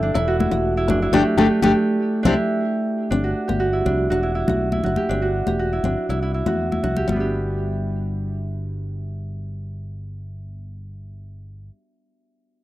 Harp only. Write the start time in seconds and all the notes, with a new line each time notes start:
Already playing: E4 G4 A4
0.03 D4
0.14 E4
0.28 F#4
0.40 E4
0.77 E4
0.90 D4
1.02 E4
1.13 A3 D4 G4
1.38 A3 D4 G4
1.63 A3 D4 G4
2.23 D4 E4
2.28 G4
3.11 D4
3.24 F#4
3.48 G4
3.60 F#4
3.73 E4
3.86 D4
4.10 F#4
4.23 E4
4.35 E4
4.47 F#4
4.72 E4
4.84 F#4
4.97 G4
5.09 D4
5.22 F#4
5.47 G4
5.59 F#4
5.73 E4
5.84 D4
6.09 E4
6.23 E4
6.34 E4
6.47 F#4
6.72 E4
6.83 F#4
6.97 G4
7.09 G3 B3
7.16 D4
7.20 G4